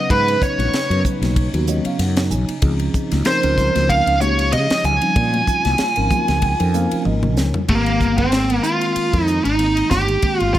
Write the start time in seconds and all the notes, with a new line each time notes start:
Already playing: C#3 F#3 B3 C#4 D#4 B4 D#5
0.10 G#2 C#4 B4, kick, ride
0.28 ride
0.42 C#5, kick, hi-hat pedal
0.59 A#1, ride, high conga
0.73 snare, ride
0.90 F#2 F#3 B3 C#4 D#4 B4, ride
1.05 kick, hi-hat pedal, low conga
1.22 B1, snare, ride, high conga
1.36 kick, ride
1.54 D#2 F#3 B3 C#4 D#4 F#4, ride
1.67 F#3 B3 C#4 D#4 C#5 D#5, hi-hat pedal, high conga
1.85 F5, muted fretless electric bass stroke, ride
1.99 F#2 F#5, snare, ride
2.17 snare, ride
2.31 B1 G#5, hi-hat pedal
2.49 muted fretless electric bass stroke, ride
2.62 C#2 F3 C4 C#4 D#4 G#4, kick, ride
2.79 ride
2.94 kick, hi-hat pedal
3.11 C#2, snare, ride, high conga
3.25 F3 C4 C#4 D#4 A#4 C5, snare, ride
3.43 C#2 F3 C4 C#4 D#4 A#4, ride
3.58 kick, snare, hi-hat pedal, low conga
3.75 C#2, snare, ride, high conga
3.89 F5, kick, ride
4.07 C#2, ride
4.21 F3 G#3 C#4 D#4 G4 C#5, hi-hat pedal, high conga
4.39 ride
4.53 C#3 D#5, ride
4.70 muted fretless electric bass stroke, snare, ride
4.84 C#2 G#5, hi-hat pedal, low conga
5.02 F3 G3 C4 C#4 D#4, ride
5.16 A#2 F4, kick, ride
5.33 ride, high conga
5.47 kick, hi-hat pedal
5.65 C2, snare, ride, high conga
5.78 snare, ride
5.96 G#1 F3 C4 C#4 D#4 A#4, ride
6.10 G#5, muted fretless electric bass stroke, kick, hi-hat pedal, high conga, low conga
6.28 C#2, snare, ride, high conga
6.42 G5, kick, ride
6.60 F2 F3 C4 C#4 D#4 A#4, ride
6.74 F3 C4 C#4 D#4 A#4 F5, hi-hat pedal, high conga
6.91 muted fretless electric bass stroke, ride, high conga
7.05 G#1 D#5, high tom, high conga
7.23 mid tom, high conga
7.37 C#2 C#5, snare, hi-hat pedal, low conga
7.54 floor tom, low conga
7.68 G#1 D#3 G#3 A#3 C4 G4, kick, ride
7.86 ride
8.00 G1, kick, hi-hat pedal
8.18 D#3 G#3 A#3 C4 G#4, kick, ride
8.32 G#1, snare, ride
8.50 D#3 G#3 A#3 C4 A#4, ride
8.63 F4, hi-hat pedal
8.81 ride
8.96 muted fretless electric bass stroke, ride
9.13 F2, kick, ride
9.25 D#4, hi-hat pedal
9.44 G#1 D#4, ride
9.59 D#3 G#3 A#3 C4 D#4, ride
9.77 ride
9.90 G1 G4, kick, snare, hi-hat pedal
10.08 ride
10.22 D#3 G#3 A#3 C4 G4, kick, ride
10.40 G1 F4, ride
10.54 F4, kick, hi-hat pedal